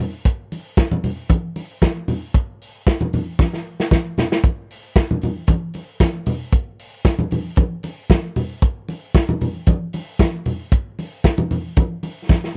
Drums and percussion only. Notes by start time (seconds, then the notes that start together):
0.25 kick, closed hi-hat
0.52 open hi-hat, muted conga
0.77 kick, snare, closed hi-hat, muted conga
0.91 high conga, low conga
1.04 open hi-hat, muted conga, low conga
1.29 kick, closed hi-hat, high conga
1.56 open hi-hat, muted conga
1.82 kick, snare, closed hi-hat, muted conga, high conga
2.08 open hi-hat, muted conga, low conga
2.34 kick, closed hi-hat
2.62 open hi-hat
2.87 kick, snare, closed hi-hat, muted conga
3.01 high conga, low conga
3.13 open hi-hat, high conga, low conga
3.39 kick, snare, muted conga, high conga
3.53 snare
3.80 snare
3.91 kick, snare, high conga
4.18 snare, low conga
4.32 snare
4.44 kick, closed hi-hat, muted conga
4.71 open hi-hat
4.96 kick, snare, closed hi-hat, muted conga
5.11 high conga, low conga
5.21 open hi-hat, high conga, low conga
5.47 kick, closed hi-hat, muted conga, high conga
5.74 open hi-hat, muted conga
6.00 kick, snare, closed hi-hat, high conga
6.26 open hi-hat, muted conga, low conga
6.52 kick, closed hi-hat
6.79 open hi-hat
7.05 kick, snare, closed hi-hat, muted conga
7.19 high conga, low conga
7.31 open hi-hat, muted conga, high conga, low conga
7.56 kick, closed hi-hat, muted conga, high conga
7.83 open hi-hat, muted conga
8.10 kick, snare, closed hi-hat, muted conga, high conga
8.36 open hi-hat, muted conga, low conga
8.62 kick, closed hi-hat
8.89 open hi-hat, muted conga
9.15 kick, snare, closed hi-hat, muted conga
9.29 high conga, low conga
9.41 open hi-hat, muted conga, high conga, low conga
9.66 kick, closed hi-hat, muted conga, high conga
9.93 open hi-hat, muted conga
10.19 kick, snare, closed hi-hat, muted conga, high conga
10.45 open hi-hat, low conga
10.72 kick, closed hi-hat
10.99 open hi-hat, muted conga
11.24 kick, snare, closed hi-hat, muted conga
11.38 high conga, low conga
11.51 open hi-hat, high conga, low conga
11.76 kick, closed hi-hat, muted conga, high conga
12.03 open hi-hat, muted conga
12.29 kick, snare, muted conga, high conga
12.44 snare